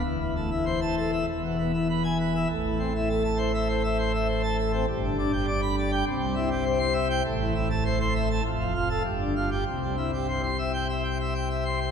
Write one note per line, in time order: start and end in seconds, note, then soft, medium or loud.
0.04 1.24 E1 medium
0.04 1.24 E2 medium
0.20 0.34 E3 medium
0.36 0.50 A3 medium
0.51 0.65 E4 medium
0.66 0.80 C5 medium
0.81 0.95 A5 medium
0.97 1.11 A4 medium
1.13 1.26 E5 medium
1.28 2.46 E1 medium
1.28 2.46 E2 medium
1.43 1.57 B2 soft
1.58 1.72 B3 soft
1.74 1.87 E4 medium
1.89 2.03 B4 soft
2.04 2.18 G#5 medium
2.20 2.33 B4 medium
2.35 2.48 E5 medium
2.50 4.85 A1 medium
2.50 4.85 A2 medium
2.65 2.78 E3 medium
2.79 2.93 C4 medium
2.95 3.08 E4 medium
3.09 3.23 A4 medium
3.24 3.38 A5 medium
3.38 3.52 C5 medium
3.54 3.68 E5 medium
3.69 3.82 C5 medium
3.84 3.97 E5 medium
3.98 4.12 C5 medium
4.14 4.27 E5 medium
4.28 4.42 C5 medium
4.43 4.57 A5 medium
4.58 4.72 A4 medium
4.72 4.86 C4 medium
4.88 6.03 G1 medium
4.88 6.03 G2 medium
5.03 5.17 D3 medium
5.18 5.32 D4 medium
5.32 5.46 G4 medium
5.47 5.61 D5 medium
5.62 5.76 B5 medium
5.78 5.91 D5 medium
5.92 6.05 G5 medium
6.07 7.22 C2 medium
6.07 7.22 C3 medium
6.22 6.35 G3 medium
6.35 6.49 E4 medium
6.51 6.64 G4 medium
6.65 6.79 C5 medium
6.79 6.93 C6 loud
6.93 7.08 E5 medium
7.10 7.23 G5 medium
7.25 8.41 A1 medium
7.25 8.41 A2 medium
7.40 7.54 E3 medium
7.55 7.68 E4 medium
7.70 7.83 A4 medium
7.85 7.99 C5 medium
8.00 8.13 C6 medium
8.15 8.28 E5 medium
8.31 8.43 A5 medium
8.45 9.03 F1 medium
8.45 9.03 F2 medium
8.60 8.73 F3 medium
8.75 8.88 F4 medium
8.90 9.02 A4 medium
9.04 9.64 G1 medium
9.04 9.64 G2 medium
9.21 9.34 D3 medium
9.36 9.49 F4 medium
9.51 9.64 G4 medium
9.66 11.91 C2 medium
9.66 11.91 C3 medium
9.82 9.96 G3 soft
9.97 10.11 E4 soft
10.14 10.27 G4 soft
10.28 10.42 C5 medium
10.43 10.57 C6 medium
10.58 10.72 E5 medium
10.74 10.87 G5 medium
10.89 11.03 E5 medium
11.04 11.18 G5 medium
11.20 11.33 E5 soft
11.35 11.48 G5 medium
11.50 11.64 E5 soft
11.65 11.79 C6 soft
11.80 11.91 C5 soft